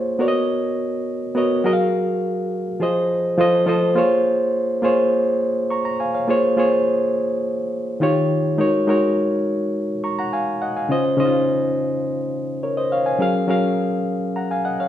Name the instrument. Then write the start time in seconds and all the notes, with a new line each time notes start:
reed electric piano
Already playing: A#3 F4 G#4 C5 C#5
0.19 B3 F#4 A#4 C#5 D5
0.28 D#5
1.35 B3 F#4 A#4 C#5 D#5
1.64 F#3 F#4 G#4 A#4 D#5
1.73 F5
2.80 F3 F4 G#4 C5 D#5
3.38 F3 F4 A4 C5 D#5
3.66 F3 F4 A4 C5 D#5
3.95 A#3 F4 G#4 C5 C#5
4.82 A#3 F4 G#4 C5 C#5
5.70 A#5 C#6
5.85 A#5
6.00 F5 G#5
6.14 C#5 F5
6.28 A#3 F4 G#4 C5 C#5
6.57 A#3 F4 G#4 C5 C#5
8.00 D#3 D#4 F4 G4 C#5
8.58 G#3 D#4 F#4 A#4 C#5
8.87 G#3 D#4 F#4 A#4 C#5
10.04 A#5 C#6
10.19 F#5 A#5
10.33 F5 G#5
10.62 D#5 F#5
10.76 F5 G#5
10.89 C#3 C#4 F4 C5 D#5
11.17 C#3 C#4 D#4 C5 D#5
11.25 F4
12.63 A#4 C#5
12.77 C5 D#5
12.92 C#5 F5
13.06 F5 G#5
13.19 F#3 C#4 G#4 A#4 F5
13.47 F#3 C#4 G#4 A#4 F5
14.36 F#5 A#5
14.51 F5 G#5
14.65 D#5 F#5
14.80 C#5 F5